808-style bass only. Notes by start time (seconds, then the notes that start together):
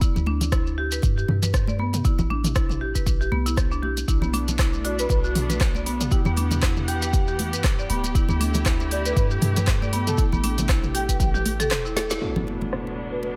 Already playing: D1
0.16 D2
1.03 G2
1.29 G2
2.19 A1
3.07 A1
3.32 C2
3.83 B1
4.08 B1
5.10 B1
6.26 E2
7.53 G2
7.90 D1
8.30 D2
9.17 G2
9.42 G2
10.33 A1
11.20 A1
11.71 E1